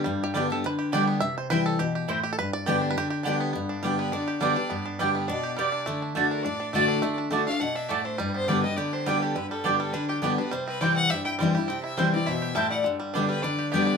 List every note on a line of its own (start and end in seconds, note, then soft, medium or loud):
0.00 0.24 G4 medium
0.04 0.61 G2 medium
0.04 0.33 G3 medium
0.24 0.49 G4 medium
0.34 0.49 D3 medium
0.34 1.65 G3 medium
0.34 0.50 G3 loud
0.34 0.44 B3 medium
0.34 0.50 B3 loud
0.34 0.44 G4 medium
0.34 0.49 G4 loud
0.34 0.44 D5 loud
0.34 0.45 G5 medium
0.50 0.64 B3 medium
0.50 0.63 G4 medium
0.50 0.64 A4 medium
0.64 0.92 D3 medium
0.64 0.95 B4 loud
0.79 1.69 G4 medium
0.92 1.20 D3 medium
0.92 1.21 G3 loud
0.92 1.02 B3 medium
0.92 1.21 B3 medium
0.92 1.02 G4 loud
0.92 1.22 G4 medium
0.92 1.07 D5 medium
0.92 1.03 D5 medium
0.92 1.03 G5 loud
1.07 1.20 B3 medium
1.20 1.77 C3 medium
1.20 1.37 E5 loud
1.38 1.50 C5 medium
1.50 1.78 E3 loud
1.50 1.79 G3 medium
1.50 1.60 C4 medium
1.50 1.79 C4 loud
1.50 1.60 E4 loud
1.50 1.79 E4 loud
1.50 1.67 B4 loud
1.50 1.61 C5 loud
1.50 1.61 G5 loud
1.66 1.79 A4 medium
1.79 2.07 B2 medium
1.79 1.94 G4 medium
1.95 2.23 G4 medium
2.08 2.36 A2 medium
2.08 2.18 C4 medium
2.08 2.32 E4 medium
2.08 2.18 E4 medium
2.08 2.19 C5 loud
2.08 2.19 G5 medium
2.23 2.31 G4 medium
2.33 2.38 A4 medium
2.39 2.94 G2 medium
2.39 2.53 B4 loud
2.53 2.81 D5 loud
2.66 2.95 D3 loud
2.66 2.95 G3 medium
2.66 2.76 B3 medium
2.66 2.95 B3 loud
2.66 2.97 G4 medium
2.66 2.76 G4 medium
2.66 2.96 G4 loud
2.66 2.77 D5 medium
2.66 2.77 G5 loud
2.82 3.22 D4 medium
2.91 2.97 B4 medium
2.97 3.24 D3 medium
2.97 3.09 G4 loud
3.10 3.51 G4 medium
3.23 3.53 D3 loud
3.23 3.53 G3 medium
3.23 3.34 B3 loud
3.23 3.54 B3 loud
3.23 3.53 D4 medium
3.23 3.35 G4 loud
3.23 3.35 D5 loud
3.23 3.35 G5 loud
3.28 3.54 G4 loud
3.40 3.52 B3 medium
3.53 4.10 G2 medium
3.53 3.95 B3 medium
3.69 4.12 D4 medium
3.83 4.11 D3 medium
3.83 4.24 G3 medium
3.83 4.11 G3 medium
3.83 3.93 B3 medium
3.83 4.11 B3 medium
3.83 3.93 G4 medium
3.83 4.12 G4 loud
3.83 3.93 D5 medium
3.83 3.93 G5 medium
3.98 4.39 B3 medium
3.98 4.14 B4 medium
4.12 4.39 D3 medium
4.12 4.56 D4 medium
4.12 4.41 D5 medium
4.28 4.67 G4 medium
4.40 4.56 D3 medium
4.40 4.82 G3 medium
4.40 4.56 G3 medium
4.40 4.51 B3 medium
4.40 4.57 B3 loud
4.40 4.51 G4 medium
4.40 4.56 G4 medium
4.40 4.51 D5 loud
4.40 4.83 D5 medium
4.40 4.51 G5 medium
4.56 4.71 B3 soft
4.56 4.85 D4 medium
4.56 4.70 G4 medium
4.70 5.26 G2 medium
4.70 5.12 B3 medium
4.86 5.28 D4 medium
4.99 5.27 D3 medium
4.99 5.41 G3 medium
4.99 5.27 G3 medium
4.99 5.09 B3 medium
4.99 5.28 B3 medium
4.99 5.09 G4 medium
4.99 5.28 G4 medium
4.99 5.09 D5 medium
4.99 5.10 G5 medium
5.14 5.55 B3 medium
5.14 5.30 B4 medium
5.28 5.57 B2 medium
5.28 5.72 D4 medium
5.28 5.57 D5 medium
5.43 5.84 G4 medium
5.57 5.86 C3 medium
5.57 5.86 G3 medium
5.57 5.67 B3 medium
5.57 5.67 G4 medium
5.57 5.99 D5 medium
5.57 5.68 D5 medium
5.57 5.68 G5 medium
5.72 6.02 D4 medium
5.86 6.14 D3 medium
5.86 6.14 A3 medium
6.02 6.31 D4 medium
6.15 6.43 D3 medium
6.15 6.57 A3 medium
6.15 6.25 A3 medium
6.15 6.43 A3 medium
6.15 6.44 D4 medium
6.15 6.25 F#4 medium
6.15 6.44 F#4 medium
6.15 6.26 D5 medium
6.15 6.26 A5 medium
6.31 6.45 D4 medium
6.31 6.45 A#4 medium
6.43 7.01 A2 medium
6.43 6.59 D4 medium
6.43 6.72 D5 medium
6.60 6.88 D4 medium
6.73 7.02 D3 medium
6.73 7.01 A3 medium
6.73 6.84 A3 loud
6.73 7.02 A3 loud
6.73 7.02 D4 medium
6.73 6.84 F#4 medium
6.73 7.02 F#4 loud
6.73 7.15 D5 loud
6.73 6.84 D5 medium
6.73 6.84 A5 loud
6.88 7.18 D4 medium
7.02 7.29 D3 medium
7.02 7.30 A3 medium
7.18 7.46 D4 medium
7.30 7.46 D3 medium
7.30 7.73 A3 medium
7.30 7.41 A3 medium
7.30 7.47 A3 medium
7.30 7.47 D4 medium
7.30 7.42 F#4 medium
7.30 7.46 F#4 medium
7.30 7.42 D5 medium
7.30 7.42 A5 medium
7.47 7.60 D4 medium
7.47 7.61 D4 medium
7.47 7.60 F#4 medium
7.47 7.62 F5 loud
7.60 7.89 B2 medium
7.60 7.75 D4 medium
7.60 7.78 F#5 loud
7.75 8.05 D4 medium
7.75 7.91 E5 medium
7.89 8.18 A2 medium
7.89 8.18 A3 medium
7.89 7.99 A3 medium
7.89 8.00 F#4 medium
7.89 8.06 D5 medium
7.89 8.00 D5 medium
7.89 8.00 A5 medium
8.05 8.93 D4 medium
8.05 8.20 C5 medium
8.18 8.75 G2 medium
8.18 8.48 G3 medium
8.18 8.34 B4 medium
8.34 8.63 B3 medium
8.34 8.50 C5 loud
8.48 8.63 D3 medium
8.48 9.06 G3 medium
8.48 8.64 G3 medium
8.48 8.58 B3 medium
8.48 8.64 B3 medium
8.48 8.58 G4 medium
8.48 8.63 G4 medium
8.48 8.62 D5 medium
8.48 8.58 D5 medium
8.48 8.58 G5 medium
8.63 9.04 B3 medium
8.63 8.78 B3 soft
8.63 8.77 G4 medium
8.63 8.78 D#5 loud
8.76 9.05 D3 medium
8.76 9.22 G4 medium
8.76 8.95 D5 medium
8.93 9.33 D4 medium
8.93 9.07 C5 medium
9.06 9.34 D3 medium
9.06 9.51 G3 medium
9.06 9.34 G3 loud
9.06 9.16 B3 loud
9.06 9.35 B3 medium
9.06 9.16 G4 medium
9.06 9.35 G4 loud
9.06 9.23 B4 medium
9.06 9.17 D5 medium
9.06 9.17 G5 loud
9.21 10.09 G4 medium
9.21 9.36 A4 medium
9.35 9.91 G2 medium
9.35 9.77 D3 medium
9.35 9.49 B4 medium
9.50 9.79 G3 medium
9.50 9.66 A4 medium
9.64 9.92 D3 medium
9.64 9.93 G3 medium
9.64 9.74 B3 medium
9.64 9.93 B3 medium
9.64 9.93 D4 medium
9.64 9.74 G4 medium
9.64 9.82 G4 medium
9.64 9.93 G4 medium
9.64 9.75 D5 medium
9.64 9.75 G5 medium
9.80 10.51 G3 medium
9.80 9.94 A4 medium
9.93 10.21 D3 medium
9.93 10.35 D4 medium
9.93 10.08 B4 medium
10.08 10.17 G4 medium
10.08 11.09 G4 medium
10.22 10.37 D3 medium
10.22 10.38 G3 medium
10.22 10.52 B3 medium
10.22 10.32 B3 medium
10.22 10.38 B3 medium
10.22 10.33 G4 medium
10.22 10.37 G4 medium
10.22 10.33 D5 medium
10.22 10.33 G5 loud
10.38 10.53 B3 medium
10.38 10.52 D4 medium
10.38 10.52 G4 medium
10.38 10.53 B4 medium
10.51 11.08 C3 medium
10.51 10.81 G3 medium
10.51 10.67 C5 medium
10.67 10.95 C4 medium
10.67 10.82 B4 loud
10.81 11.09 E3 medium
10.81 11.38 G3 medium
10.81 11.09 G3 medium
10.81 10.91 C4 medium
10.81 11.10 C4 medium
10.81 10.91 E4 medium
10.81 11.10 E4 loud
10.81 10.91 C5 medium
10.81 10.95 D5 medium
10.81 10.91 G5 loud
10.96 11.36 C4 medium
10.96 11.12 F#5 loud
11.10 11.66 G2 medium
11.10 11.54 G4 medium
11.10 11.24 E5 loud
11.25 11.65 E4 medium
11.25 11.33 G5 loud
11.39 11.55 E3 medium
11.39 11.97 G3 medium
11.39 11.55 G3 medium
11.39 11.49 C4 medium
11.39 11.56 C4 medium
11.39 11.49 E4 medium
11.39 11.56 E4 loud
11.39 11.49 C5 medium
11.39 11.50 G5 medium
11.55 11.69 E4 medium
11.55 12.42 G4 medium
11.59 11.70 C4 medium
11.67 12.25 C3 medium
11.67 12.10 C4 medium
11.67 11.82 G5 medium
11.83 12.24 E4 medium
11.83 11.98 E5 medium
11.97 12.13 E3 medium
11.97 12.55 G3 medium
11.97 12.13 G3 loud
11.97 12.07 C4 medium
11.97 12.13 C4 medium
11.97 12.07 E4 medium
11.97 12.13 E4 medium
11.97 12.12 C5 medium
11.97 12.08 C5 medium
11.97 12.08 G5 medium
12.12 12.53 C4 medium
12.12 12.28 C4 medium
12.12 12.27 E4 medium
12.12 12.28 D5 loud
12.26 12.55 B2 medium
12.26 12.68 E4 medium
12.26 12.55 C5 medium
12.26 12.57 E5 medium
12.42 13.58 G4 medium
12.55 12.84 A2 medium
12.55 12.99 G3 medium
12.55 12.65 C4 medium
12.55 12.65 E4 medium
12.55 12.66 C5 medium
12.55 12.70 E5 medium
12.55 12.66 G5 medium
12.55 12.70 A5 loud
12.70 12.85 E4 medium
12.70 12.83 D5 medium
12.70 12.84 F#5 medium
12.84 13.41 G2 medium
12.84 13.26 D3 medium
13.00 13.28 G3 medium
13.14 13.42 D3 medium
13.14 13.43 G3 medium
13.14 13.24 B3 medium
13.14 13.43 B3 medium
13.14 13.42 D4 medium
13.14 13.24 G4 medium
13.14 13.44 G4 medium
13.14 13.24 D5 medium
13.14 13.24 G5 loud
13.29 13.69 G3 medium
13.29 13.42 G4 medium
13.29 13.44 B4 loud
13.42 13.72 D3 medium
13.42 13.87 D4 medium
13.42 13.70 B4 medium
13.42 13.71 D5 medium
13.59 13.97 G4 medium
13.71 13.97 D3 loud
13.71 13.97 G3 loud
13.71 13.82 B3 medium
13.71 13.97 B3 medium
13.71 13.82 G4 medium
13.71 13.97 G4 loud
13.71 13.97 B4 medium
13.71 13.97 D5 medium
13.71 13.82 D5 medium
13.71 13.82 G5 medium
13.87 13.97 D4 medium